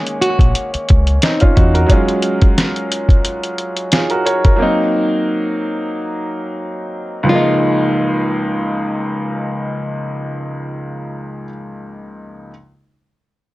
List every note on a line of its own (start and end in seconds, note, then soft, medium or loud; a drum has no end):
0.00 1.50 D#3 medium
0.00 1.51 G#3 medium
0.00 1.52 A#3 medium
0.00 1.20 C#4 medium
0.00 0.17 G#4 medium
0.07 closed hi-hat medium
0.21 0.71 F#4 medium
0.21 closed hi-hat medium
0.39 0.52 A#1 medium
0.39 kick loud
0.39 closed hi-hat medium
0.55 closed hi-hat loud
0.74 muted fingered electric bass stroke soft
0.74 closed hi-hat soft
0.89 1.17 C#2 loud
0.89 kick medium
0.89 closed hi-hat medium
1.07 closed hi-hat medium
1.22 1.41 C4 medium
1.22 1.41 D#4 medium
1.22 snare loud
1.22 closed hi-hat loud
1.40 1.56 C#4 medium
1.40 1.55 F4 medium
1.40 kick loud
1.40 closed hi-hat medium
1.56 1.84 E2 medium
1.56 1.74 D#4 medium
1.56 1.73 F#4 medium
1.56 kick loud
1.56 closed hi-hat medium
1.74 2.07 F#4 medium
1.74 2.07 A#4 medium
1.74 closed hi-hat medium
1.86 4.20 F#3 medium
1.86 4.21 G#3 medium
1.86 kick loud
1.86 closed hi-hat loud
1.91 4.22 C#4 medium
1.91 3.89 F4 medium
2.08 closed hi-hat medium
2.22 closed hi-hat medium
2.42 kick loud
2.42 closed hi-hat medium
2.58 snare loud
2.58 closed hi-hat medium
2.76 closed hi-hat medium
2.92 closed hi-hat medium
3.09 kick loud
3.09 closed hi-hat medium
3.25 closed hi-hat medium
3.43 closed hi-hat medium
3.58 closed hi-hat medium
3.77 closed hi-hat medium
3.92 4.10 F4 medium
3.92 4.10 G#4 medium
3.92 snare loud
3.92 closed hi-hat loud
4.10 4.25 F#4 medium
4.10 4.25 A#4 medium
4.10 closed hi-hat medium
4.25 4.43 A#4 medium
4.25 4.43 C#5 medium
4.25 closed hi-hat medium
4.45 4.77 F#4 medium
4.45 4.77 A#4 medium
4.45 kick medium
4.45 closed hi-hat medium
4.56 7.24 F#3 medium
4.56 7.25 A#3 medium
4.60 7.26 C4 medium
4.60 7.27 D#4 medium
7.23 11.42 C#2 medium
7.23 11.43 F3 medium
7.29 11.45 G#3 medium
7.29 11.46 A#3 medium
7.29 9.27 F4 medium
7.35 11.48 D#4 loud